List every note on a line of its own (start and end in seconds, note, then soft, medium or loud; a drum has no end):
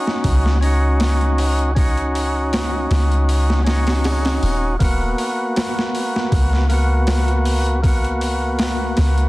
0.00 0.57 C#4 medium
0.00 0.58 D#4 medium
0.00 0.59 F#4 medium
0.07 snare soft
0.24 2.87 C#2 loud
0.24 kick loud
0.24 open hi-hat medium
0.46 snare soft
0.61 1.71 C#4 medium
0.61 1.72 D#4 medium
0.61 open hi-hat medium
0.65 1.73 F#4 medium
1.00 snare loud
1.00 open hi-hat medium
1.21 closed hi-hat soft
1.38 open hi-hat medium
1.59 closed hi-hat soft
1.75 3.61 C#4 medium
1.75 3.62 D#4 medium
1.75 kick loud
1.75 open hi-hat medium
1.79 3.63 F#4 medium
1.97 closed hi-hat soft
2.15 open hi-hat medium
2.53 snare loud
2.53 open hi-hat medium
2.91 4.39 C#2 medium
2.91 snare medium
2.91 open hi-hat medium
3.12 closed hi-hat soft
3.29 open hi-hat loud
3.50 snare soft
3.64 4.75 C#4 medium
3.64 4.76 D#4 medium
3.64 snare loud
3.64 open hi-hat medium
3.68 4.77 F#4 medium
3.87 snare loud
3.87 open hi-hat medium
4.04 snare loud
4.04 open hi-hat medium
4.25 snare loud
4.25 open hi-hat medium
4.43 4.76 D#1 medium
4.43 open hi-hat medium
4.79 5.14 D#1 loud
4.79 6.65 A#3 medium
4.79 6.66 B3 medium
4.79 kick loud
4.79 open hi-hat medium
4.84 6.67 F#4 medium
5.18 open hi-hat medium
5.56 snare loud
5.56 open hi-hat medium
5.79 snare medium
5.95 open hi-hat medium
6.16 snare soft
6.32 8.95 C#2 loud
6.32 kick loud
6.32 open hi-hat medium
6.53 snare soft
6.69 7.79 A#3 medium
6.69 7.80 B3 medium
6.69 open hi-hat medium
6.74 7.81 F#4 medium
7.07 snare loud
7.07 open hi-hat loud
7.28 closed hi-hat soft
7.45 open hi-hat medium
7.66 closed hi-hat soft
7.82 9.29 A#3 medium
7.82 9.29 B3 medium
7.82 9.29 F#4 medium
7.82 kick loud
7.82 open hi-hat medium
8.04 closed hi-hat soft
8.21 open hi-hat medium
8.59 snare loud
8.59 open hi-hat medium
8.97 9.29 C#2 medium
8.97 snare medium
8.97 open hi-hat medium
9.18 closed hi-hat soft